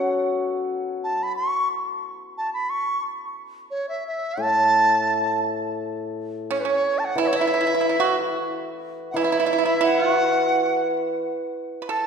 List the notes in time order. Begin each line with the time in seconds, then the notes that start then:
Already playing: F#3 C#4 F#4 A4 C#5
1.04 A5
1.23 B5
1.36 C#6
2.37 A5
2.54 B5
2.70 C#6
3.71 C#5
3.89 E5
4.07 E5
4.37 A2
4.42 A5
6.51 C#4 C#5
6.60 B4
6.65 C#4 C#5
6.99 A5
7.05 F#5
7.15 E3 E4
7.23 E5
7.27 C#5
7.33 E4 E5
7.41 E4
7.47 E4
7.54 E4
7.61 E4
7.67 E4
7.75 E4
7.81 E4
7.89 E4
8.00 F#4
9.11 E3 F#5
9.16 E4 E5
9.24 E4
9.32 E4
9.40 E4
9.46 E4
9.53 E4
9.58 E4
9.65 E4
9.81 E4 F#5
10.11 F#4
11.82 B4
11.89 A4 A5